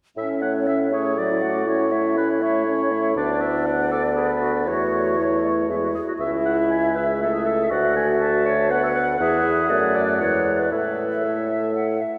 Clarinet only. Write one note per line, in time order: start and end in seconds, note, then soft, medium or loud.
0.17 0.94 C#4 medium
0.93 1.19 G#4 soft
1.18 1.30 F#4 soft
1.31 1.37 E4 soft
1.42 1.69 F#4 soft
1.67 3.15 E4 medium
3.16 3.89 D4 medium
3.91 4.02 A4 medium
4.16 4.27 G#4 soft
4.42 4.53 F#4 soft
4.67 5.20 F#4 medium
5.19 5.69 E4 soft
5.83 5.88 F#4 soft
5.94 6.00 G#4 soft
6.08 6.13 F#4 soft
6.20 6.94 E4 medium
6.95 7.07 B4 soft
7.20 7.35 A4 soft
7.33 7.45 G#4 soft
7.45 7.70 A4 medium
7.70 8.44 F#4 medium
8.45 8.71 C#5 medium
8.70 8.83 B4 medium
8.83 8.89 A4 medium
8.95 9.06 B4 medium
9.20 9.97 G#4 medium
9.95 10.20 D5 medium
10.20 10.61 C#5 medium
10.60 10.72 B4 medium
10.73 11.25 B4 medium
11.24 11.76 A4 soft